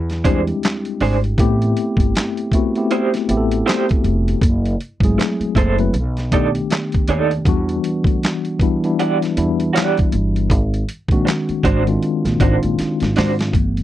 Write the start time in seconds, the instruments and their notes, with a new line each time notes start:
Already playing: upright bass E2
0.10 snare, closed hi-hat
0.24 tine electric piano G3 C4 D4 E4 G4, clean electric guitar D4 G#4 C5, kick, closed hi-hat
0.31 tine electric piano G#3
0.47 closed hi-hat
0.63 snare, clap, closed hi-hat
0.85 closed hi-hat
1.00 upright bass G#1, clean electric guitar D4 G#4 C5, open hi-hat
1.24 closed hi-hat
1.38 upright bass A1, tine electric piano A3 B3 C4 E4 G4, kick, closed hi-hat
1.62 closed hi-hat
1.77 closed hi-hat
1.97 upright bass G1, kick, closed hi-hat
2.15 snare, clap, closed hi-hat
2.37 closed hi-hat
2.52 tine electric piano A3 B3 C4 E4 F#4, kick, closed hi-hat
2.75 tine electric piano A3 B3 C4 E4 G4, closed hi-hat
2.91 clean electric guitar E4 G4 C5, closed hi-hat
3.14 snare, closed hi-hat
3.29 upright bass A1, tine electric piano A3 B3 C4 E4 G4, closed hi-hat
3.37 tine electric piano A4
3.51 closed hi-hat
3.66 clean electric guitar E4 G4 C5, snare, closed hi-hat
3.70 clap
3.89 kick, closed hi-hat
4.04 upright bass F1, closed hi-hat
4.28 closed hi-hat
4.41 upright bass F#1, kick, closed hi-hat
4.65 closed hi-hat
4.81 closed hi-hat
5.00 upright bass G#1, tine electric piano F#3 G#3 C4 E4, kick, closed hi-hat
5.05 tine electric piano G#4
5.09 tine electric piano A3
5.18 muted clean electric guitar stroke, snare, clap, closed hi-hat
5.40 muted upright bass stroke, closed hi-hat
5.55 upright bass F#1, clean electric guitar E4 A4 C5, kick, closed hi-hat
5.78 tine electric piano F#3 A3 C4 E4 B4, closed hi-hat
5.93 upright bass B1, closed hi-hat
6.17 snare, closed hi-hat
6.32 tine electric piano D#3 A3 B3 D4 G4, clean electric guitar D#4 A4 D5, kick, closed hi-hat
6.55 closed hi-hat
6.70 muted clean electric guitar stroke, snare, clap, closed hi-hat
6.92 kick, closed hi-hat
7.08 upright bass D#2, clean electric guitar D#4 A4 D5, closed hi-hat
7.31 closed hi-hat
7.45 upright bass E2, tine electric piano E3 G3 B3 D4 F#4, kick, closed hi-hat
7.69 closed hi-hat
7.84 closed hi-hat
8.04 upright bass D2, kick, closed hi-hat
8.23 snare, clap, closed hi-hat
8.45 closed hi-hat
8.59 tine electric piano E3 G3 B3 D4 E4, kick, closed hi-hat
8.84 tine electric piano E3 G3 B3 D4 E4, closed hi-hat
8.99 clean electric guitar G4 D5 F#5, closed hi-hat
9.22 snare, closed hi-hat
9.37 upright bass E2, tine electric piano E3 G3 B3 D4 E4, closed hi-hat
9.60 closed hi-hat
9.73 clean electric guitar G4 D5 F#5, closed hi-hat
9.78 snare, clap
9.97 kick, closed hi-hat
10.12 upright bass G1, closed hi-hat
10.36 closed hi-hat
10.50 upright bass G#1, kick, closed hi-hat
10.74 closed hi-hat
10.89 closed hi-hat
11.08 upright bass A#1, tine electric piano D#3 G#3 C4 F#4, kick, closed hi-hat
11.12 tine electric piano D4
11.25 muted clean electric guitar stroke, snare, closed hi-hat
11.29 clap
11.49 muted upright bass stroke, closed hi-hat
11.63 upright bass G#1, clean electric guitar D4 F#4 C5, kick, closed hi-hat
11.87 tine electric piano D#3 G#3 C4 D4 F4, closed hi-hat
12.03 closed hi-hat
12.25 upright bass A#1, snare, closed hi-hat
12.40 upright bass G#1, tine electric piano D#3 G#3 C4 D4 D#4, clean electric guitar D4 F#4 C5, kick, closed hi-hat
12.49 tine electric piano F4
12.63 upright bass A#1, closed hi-hat
12.79 muted upright bass stroke, snare, closed hi-hat
13.00 upright bass G#1, snare, closed hi-hat
13.16 upright bass G#2, clean electric guitar D4 F#4 C5, snare, open hi-hat
13.39 snare, closed hi-hat
13.53 upright bass G1, tine electric piano E3 A3 B3, kick, closed hi-hat
13.77 closed hi-hat